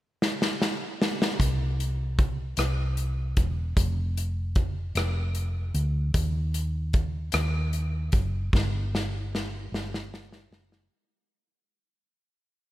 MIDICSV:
0, 0, Header, 1, 3, 480
1, 0, Start_track
1, 0, Tempo, 792602
1, 845, Time_signature, 6, 3, 24, 8
1, 7701, End_track
2, 0, Start_track
2, 0, Title_t, "Fingered electric bass"
2, 0, Program_c, 0, 33
2, 845, Note_on_c, 0, 36, 72
2, 1541, Note_off_c, 0, 36, 0
2, 1560, Note_on_c, 0, 36, 72
2, 2018, Note_off_c, 0, 36, 0
2, 2041, Note_on_c, 0, 28, 65
2, 2264, Note_off_c, 0, 28, 0
2, 2283, Note_on_c, 0, 29, 79
2, 2979, Note_off_c, 0, 29, 0
2, 2998, Note_on_c, 0, 29, 68
2, 3456, Note_off_c, 0, 29, 0
2, 3479, Note_on_c, 0, 38, 70
2, 3702, Note_off_c, 0, 38, 0
2, 3721, Note_on_c, 0, 39, 82
2, 4417, Note_off_c, 0, 39, 0
2, 4442, Note_on_c, 0, 39, 75
2, 4898, Note_off_c, 0, 39, 0
2, 4922, Note_on_c, 0, 30, 71
2, 5143, Note_off_c, 0, 30, 0
2, 5168, Note_on_c, 0, 31, 81
2, 5860, Note_off_c, 0, 31, 0
2, 5886, Note_on_c, 0, 31, 67
2, 6339, Note_off_c, 0, 31, 0
2, 6365, Note_on_c, 0, 30, 77
2, 6584, Note_off_c, 0, 30, 0
2, 7701, End_track
3, 0, Start_track
3, 0, Title_t, "Drums"
3, 134, Note_on_c, 9, 38, 58
3, 195, Note_off_c, 9, 38, 0
3, 254, Note_on_c, 9, 38, 58
3, 314, Note_off_c, 9, 38, 0
3, 373, Note_on_c, 9, 38, 60
3, 433, Note_off_c, 9, 38, 0
3, 615, Note_on_c, 9, 38, 72
3, 676, Note_off_c, 9, 38, 0
3, 737, Note_on_c, 9, 38, 75
3, 798, Note_off_c, 9, 38, 0
3, 846, Note_on_c, 9, 36, 83
3, 852, Note_on_c, 9, 42, 73
3, 907, Note_off_c, 9, 36, 0
3, 913, Note_off_c, 9, 42, 0
3, 1091, Note_on_c, 9, 42, 44
3, 1152, Note_off_c, 9, 42, 0
3, 1324, Note_on_c, 9, 36, 81
3, 1324, Note_on_c, 9, 42, 33
3, 1385, Note_off_c, 9, 36, 0
3, 1385, Note_off_c, 9, 42, 0
3, 1556, Note_on_c, 9, 42, 62
3, 1567, Note_on_c, 9, 37, 86
3, 1616, Note_off_c, 9, 42, 0
3, 1628, Note_off_c, 9, 37, 0
3, 1799, Note_on_c, 9, 42, 36
3, 1860, Note_off_c, 9, 42, 0
3, 2039, Note_on_c, 9, 42, 42
3, 2041, Note_on_c, 9, 36, 72
3, 2100, Note_off_c, 9, 42, 0
3, 2102, Note_off_c, 9, 36, 0
3, 2282, Note_on_c, 9, 36, 85
3, 2283, Note_on_c, 9, 42, 73
3, 2342, Note_off_c, 9, 36, 0
3, 2344, Note_off_c, 9, 42, 0
3, 2528, Note_on_c, 9, 42, 47
3, 2588, Note_off_c, 9, 42, 0
3, 2758, Note_on_c, 9, 42, 35
3, 2761, Note_on_c, 9, 36, 77
3, 2819, Note_off_c, 9, 42, 0
3, 2822, Note_off_c, 9, 36, 0
3, 3000, Note_on_c, 9, 42, 59
3, 3012, Note_on_c, 9, 37, 92
3, 3061, Note_off_c, 9, 42, 0
3, 3072, Note_off_c, 9, 37, 0
3, 3238, Note_on_c, 9, 42, 37
3, 3299, Note_off_c, 9, 42, 0
3, 3480, Note_on_c, 9, 42, 40
3, 3540, Note_off_c, 9, 42, 0
3, 3719, Note_on_c, 9, 42, 78
3, 3720, Note_on_c, 9, 36, 86
3, 3780, Note_off_c, 9, 42, 0
3, 3781, Note_off_c, 9, 36, 0
3, 3962, Note_on_c, 9, 42, 48
3, 4023, Note_off_c, 9, 42, 0
3, 4199, Note_on_c, 9, 42, 34
3, 4203, Note_on_c, 9, 36, 76
3, 4259, Note_off_c, 9, 42, 0
3, 4263, Note_off_c, 9, 36, 0
3, 4433, Note_on_c, 9, 42, 60
3, 4445, Note_on_c, 9, 37, 95
3, 4494, Note_off_c, 9, 42, 0
3, 4505, Note_off_c, 9, 37, 0
3, 4681, Note_on_c, 9, 42, 37
3, 4742, Note_off_c, 9, 42, 0
3, 4918, Note_on_c, 9, 42, 43
3, 4923, Note_on_c, 9, 36, 73
3, 4978, Note_off_c, 9, 42, 0
3, 4984, Note_off_c, 9, 36, 0
3, 5166, Note_on_c, 9, 36, 86
3, 5178, Note_on_c, 9, 38, 46
3, 5227, Note_off_c, 9, 36, 0
3, 5238, Note_off_c, 9, 38, 0
3, 5419, Note_on_c, 9, 38, 55
3, 5479, Note_off_c, 9, 38, 0
3, 5661, Note_on_c, 9, 38, 60
3, 5722, Note_off_c, 9, 38, 0
3, 5901, Note_on_c, 9, 38, 67
3, 5962, Note_off_c, 9, 38, 0
3, 6022, Note_on_c, 9, 38, 59
3, 6083, Note_off_c, 9, 38, 0
3, 6139, Note_on_c, 9, 38, 71
3, 6200, Note_off_c, 9, 38, 0
3, 6253, Note_on_c, 9, 38, 62
3, 6313, Note_off_c, 9, 38, 0
3, 6374, Note_on_c, 9, 38, 82
3, 6435, Note_off_c, 9, 38, 0
3, 6493, Note_on_c, 9, 38, 69
3, 6554, Note_off_c, 9, 38, 0
3, 7701, End_track
0, 0, End_of_file